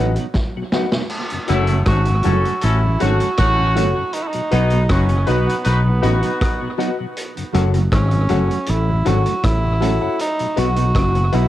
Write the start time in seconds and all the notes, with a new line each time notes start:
Already playing: F#3 F#4 B4 D#5 F#5
0.00 A1 A2
0.16 B2 F#3 B3 D#4 F#4, closed hi-hat
0.20 F#3
0.34 kick, snare
0.57 B2 F#3
0.72 F#3 B3 D#4 F#4 B4 D#5 F#5, snare
0.92 B2 F#3 B3 D#4 F#4, snare
0.96 F#3
1.09 crash
1.30 F#2 C#3, closed hi-hat
1.48 F#1 F#2 F#3 A3 C#4 E4 F#4 A4 C#5 F#5, closed hi-hat
1.67 F#2 C#3 F#3 A3 C#4 F#4, closed hi-hat
1.86 G#1 G#2 A3 C#4 F#4, kick, cross-stick, closed hi-hat
2.05 F#2 C#3, closed hi-hat
2.23 F#1 F#2 F#3 A3 C#4 F#4 A4 C#5 F#5, closed hi-hat
2.45 F#2 C#3 F#3 A3 C#4 F#4, closed hi-hat
2.61 A1 A2 C#4 E4 F#4 A4, closed hi-hat
2.83 F#2 C#3
2.99 G#1 G#2 F#3 A3 C#4 F#4 A4 C#5 F#5, closed hi-hat
3.20 F#2 C#3 F#3 A3 C#4 F#4, closed hi-hat
3.37 A1 A2 A3 C#4 F#4, kick, cross-stick, closed hi-hat
3.59 F#2 C#3
3.75 F#3 A3 C#4 F#4 A4 C#5 F#5, closed hi-hat
3.97 F#2 C#3
4.13 D#4, closed hi-hat
4.23 E4
4.28 D#4
4.33 B2 F#3, closed hi-hat
4.51 B1 B2 F#3 B3 D#4 F#4 B4 D#5 F#5, closed hi-hat
4.70 B2 F#3 B3 D#4 F#4, closed hi-hat
4.89 F#1 F#2 B3 C#4 D#4 F#4, kick, cross-stick, closed hi-hat
5.09 B2 F#3, closed hi-hat
5.26 B1 B2 F#3 B3 D#4 F#4 B4 D#5 F#5, closed hi-hat
5.47 B2 F#3 B3 D#4 F#4, closed hi-hat
5.63 B1 B2 D#4 F#4 B4, closed hi-hat
5.68 B3
5.86 B2 F#3
6.01 A1 A2 F#3 B3 D#4 F#4 B4 D#5 F#5, closed hi-hat
6.23 B2 F#3 B3 D#4 F#4, closed hi-hat
6.41 kick, cross-stick, closed hi-hat
6.62 B2 F#3
6.78 F#3 B3 D#4 F#4 B4 D#5 F#5, closed hi-hat
7.00 B2 F#3
7.17 closed hi-hat
7.37 F#2 C#3, closed hi-hat
7.53 F#1 F#2 F#3 A3 C#4 F#4 A4 C#5 F#5, closed hi-hat
7.74 F#2 C#3 F#3 A3 C#4 F#4, closed hi-hat
7.92 G#1 G#2 C#4, kick, cross-stick, closed hi-hat
8.11 F#2 C#3, closed hi-hat
8.29 F#1 F#2 F#3 A3 C#4 F#4 A4 C#5 F#5, closed hi-hat
8.49 F#2 C#3 F#3 A3 C#4 F#4, closed hi-hat
8.66 A1 A2 E4, closed hi-hat
8.89 F#2 C#3
9.05 G#1 G#2 F#3 A3 C#4 F#4 A4 C#5 F#5, closed hi-hat
9.25 F#2 C#3 F#3 A3 C#4 F#4, closed hi-hat
9.43 A1 A2 E4, kick, cross-stick, closed hi-hat
9.65 F#2 C#3
9.80 F#3 A3 C#4 F#4 A4 C#5 F#5, closed hi-hat
10.00 F#2 C#3 F#4 A4 C#5 F#5
10.19 D#4, closed hi-hat
10.39 B2 F#3, closed hi-hat
10.56 B1 B2 F#3 B3 D#4 F#4 B4 D#5 F#5, closed hi-hat
10.76 B2 F#3 B3 D#4 F#4, closed hi-hat
10.95 F#1 F#2, kick, cross-stick, closed hi-hat
11.15 B2 F#3, closed hi-hat
11.32 B1 B2 F#3 B3 D#4 E4 F#4 B4 D#5 F#5, closed hi-hat